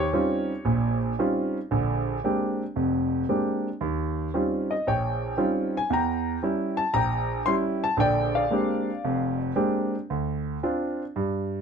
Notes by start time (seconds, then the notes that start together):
Already playing: G4 C#5
0.13 G3 C4 C#4 D#4 F4
0.65 A#1 A#2
1.19 G3 C4 C#4 D#4 F4
1.71 A#1 D3
2.24 G#3 A#3 C4 D4 G4
2.76 F1 F2
3.29 G#3 A#3 C4 D4 G4
3.81 D#2
4.34 G3 C4 C#4 D#4 F4
4.71 D#5
4.87 A#1 C#5 G5
5.37 G3 C4 C#4 D#4 F4
5.77 G#5
5.90 E2 G5 A#5
6.43 G3 C#4 E4
6.77 A5
6.94 A#1 G5 A#5
7.46 G3 C#4 E4 C6
7.84 A5
7.97 A#1 D3 G5
8.01 D5
8.35 D5 F5
8.51 G#3 A#3 C4 D4 G4
9.05 F1 F2
9.56 G#3 A#3 C4 D4 G4
10.10 D2
10.63 C4 D4 F4
11.16 G2